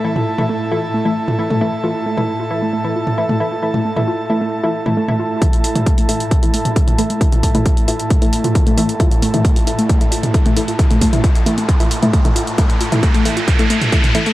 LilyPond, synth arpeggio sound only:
\new Staff \with { instrumentName = "Synth arpeggio sound" } { \time 4/4 \key c \major \tempo 4 = 134 r16 f'16 r16 a16 a16 r16 f'16 r16 a16 a16 r16 f'16 r16 a16 a16 r16 | f'16 r16 a16 a16 r16 f'16 r16 a16 a16 r16 f'16 r16 a16 a16 r16 f'16 | r16 a16 a16 r16 f'16 r16 a16 a16 r16 f'16 r16 a16 a16 r16 f'16 r16 | a16 r16 f'16 r16 a16 a16 r16 f'16 r16 a16 a16 r8. a16 a16 |
r16 f'16 r16 a16 a16 r16 f'16 r16 a16 a16 r16 f'16 r16 a16 a16 r16 | f'16 r16 a16 a16 r16 f'16 r16 a16 r8 f'16 r16 a16 a16 r16 f'16 | r16 a16 a16 r16 f'16 r16 a16 a16 r16 f'16 r16 a16 a16 r16 f'16 r16 | a16 r16 f'16 r16 a16 a16 r16 f'16 r16 a16 a16 r16 f'16 r16 a16 a16 | }